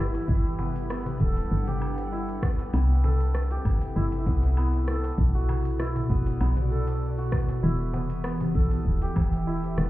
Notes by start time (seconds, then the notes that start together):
Already playing: E3 B3 E4 G4 A4 B4
0.14 open hi-hat, darbuka ka, cabasa
0.28 G1 G3 E4, kick, cabasa
0.52 F#5
0.59 B3, darbuka tek, darbuka dum, cabasa
0.76 open hi-hat, cabasa
0.85 D4
0.90 B3, cross-stick, cabasa, low woodblock
1.06 open hi-hat, darbuka ka, darbuka dum
1.20 D1 A4, kick, cabasa
1.37 open hi-hat, darbuka tek, cabasa
1.51 G1, cabasa
1.67 G4, open hi-hat, darbuka dum
1.82 cabasa, low woodblock
1.98 open hi-hat, darbuka ka, cabasa
2.12 E4, cabasa
2.29 open hi-hat
2.43 B3, kick, cross-stick, darbuka tek, cabasa
2.59 open hi-hat, darbuka ka, cabasa
2.73 C2 C3 B3, cabasa, low woodblock
3.03 E4 A4, darbuka tek, darbuka dum, cabasa
3.20 open hi-hat, cabasa
3.35 cross-stick, cabasa
3.51 G4, open hi-hat, darbuka ka
3.65 G1, kick, cabasa, low woodblock
3.81 open hi-hat, darbuka tek, cabasa
3.96 G1 E4, cabasa
4.12 open hi-hat, darbuka ka
4.26 C2 B3, kick, darbuka tek, cabasa
4.43 open hi-hat, darbuka ka, cabasa
4.57 B3, cabasa, low woodblock
4.73 open hi-hat, darbuka tek
4.88 A4, cross-stick, cabasa
5.04 open hi-hat, darbuka ka, cabasa
5.18 B1 B2, kick, cabasa
5.35 F#4
5.49 darbuka tek, darbuka dum, cabasa, low woodblock
5.65 open hi-hat, cabasa
5.70 B3 D5
5.76 E4 F#4, cross-stick, cabasa
5.96 open hi-hat, darbuka ka, darbuka dum
6.10 F#1 B3, kick, cabasa
6.26 open hi-hat, darbuka tek, cabasa
6.40 B1 B3, cabasa, low woodblock
6.57 open hi-hat, darbuka dum
6.71 A4, cabasa
6.87 open hi-hat, darbuka ka, cabasa
7.02 cabasa
7.18 F#4, open hi-hat
7.32 kick, cross-stick, darbuka tek, cabasa, low woodblock
7.49 open hi-hat, darbuka ka, cabasa
7.63 E1 E3 E4, cabasa
7.83 G4
7.93 B3, darbuka tek, darbuka dum, cabasa
8.10 open hi-hat, cabasa
8.24 B3, cross-stick, cabasa, low woodblock
8.41 open hi-hat, darbuka ka, darbuka dum
8.55 B1 A4, kick, cabasa
8.71 E5, open hi-hat, darbuka tek, cabasa
8.85 D1, kick, cabasa
9.02 G4, open hi-hat, darbuka ka
9.16 E1, kick, darbuka tek, cabasa, low woodblock
9.33 open hi-hat, darbuka ka, cabasa
9.47 E4, cabasa
9.64 open hi-hat, darbuka tek
9.78 E1 B3, cross-stick, cabasa